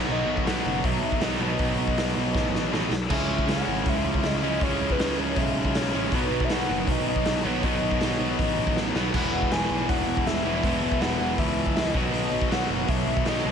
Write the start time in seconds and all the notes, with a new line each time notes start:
Already playing: B2 D#3 F#3 B3 D#4
0.08 B1 D#5
0.26 B1
0.37 kick
0.46 B1 F#5, snare, open hi-hat
0.64 F#1
0.84 B1 E5, kick, open hi-hat
1.02 B1
1.12 kick
1.21 B1 B2 D#3 F#3 B3 D#4 D#5, snare, open hi-hat
1.39 B1 B2 D#3 F#3 B3 D#4 D#5
1.59 B1, kick, open hi-hat
1.78 B1
1.88 kick
1.97 B1, snare, open hi-hat
2.17 B1
2.35 A1, kick, snare
2.52 A1, snare
2.72 A1 B2 D#3 F#3 B3 D#4, snare
2.90 B1, snare
3.09 C#2 C#3 G#3 C#4 E4 E5, kick, crash
3.27 C#2
3.38 kick
3.47 C#2 F#5, snare, open hi-hat
3.67 G#1
3.86 C#2 E5, kick, open hi-hat
4.04 C#2
4.14 kick
4.23 C#2 D#5, snare, open hi-hat
4.42 C#2 C#3 G#3 C#4 E4
4.61 C#2 C#3 G#3 C#4 C#5, kick, open hi-hat
4.65 E4
4.81 C#2
4.90 B4, kick
4.99 C#2, snare, open hi-hat
5.19 C#2 C#5
5.36 B1 E5, kick, open hi-hat
5.56 B1
5.65 kick
5.75 B1 C#5, snare, open hi-hat
5.93 A1 C#3 G#3 C#4 E4
6.12 B1 B2 D#3 F#3 B3 D#4 B4, kick, open hi-hat
6.30 B1
6.40 kick
6.44 E5
6.49 B1 F#5, snare, open hi-hat
6.69 F#1
6.87 B1, kick, open hi-hat
6.91 D#5
7.07 B1 D#5
7.16 kick
7.25 B1, snare, open hi-hat
7.44 B1 B2 D#3 F#3 B3 D#4 C#5
7.62 B1 B2 D#3 F#3 B3 D#4 D#5, kick, open hi-hat
7.82 B1
7.91 kick
8.01 B1, snare, open hi-hat
8.19 B1 D#5
8.39 A1, kick, open hi-hat
8.57 A1
8.67 kick
8.76 A1, snare
8.94 B1 F#3 B3 D#4, snare
8.99 B2 D#3
9.13 E1 E2 B2 E3 G#3 B3 F#5, kick, crash
9.17 E4
9.33 E1
9.42 kick
9.51 E1 G#5, snare, open hi-hat
9.70 B1
9.89 E1 F#5, kick, open hi-hat
10.07 E1
10.17 kick
10.26 E1 E5, snare, open hi-hat
10.45 E1 B2 E3 G#3 B3 E4
10.50 E2
10.63 E1 E2 B2 E3 G#3 B3 E4 E5, kick, open hi-hat
10.67 E3
10.82 E1
10.92 kick
11.01 E1 F#5, snare, open hi-hat
11.19 E1
11.38 C#2 E5, kick, open hi-hat
11.56 C#2
11.66 kick
11.74 C#2 D#5, snare, open hi-hat
11.94 B1 B2 D#3 F#3 B3 D#4, kick
12.12 B1 D#5, open hi-hat
12.31 B1
12.41 kick
12.50 B1 F#5, snare, open hi-hat
12.68 F#1
12.88 B1 E5, kick, open hi-hat
13.07 B1
13.17 kick
13.25 B1 B2 D#3 F#3 B3 D#4 D#5, snare, open hi-hat
13.44 B1 B2 D#3 F#3 B3 D#4